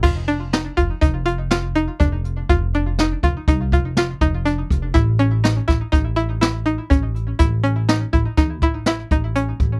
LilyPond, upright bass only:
\new Staff \with { instrumentName = "Upright bass" } { \clef bass \time 5/4 \key f \mixolydian \tempo 4 = 122 f,,4. f,,16 r16 f,,2 f,,4 | f,,4. f,,16 r16 c,8 f,,4 f,,4 f,,8 | a,,4. a,,16 r16 a,,2 a,,4 | a,,4. a,,16 r16 e,8 a,,4 a,,4 a,,8 | }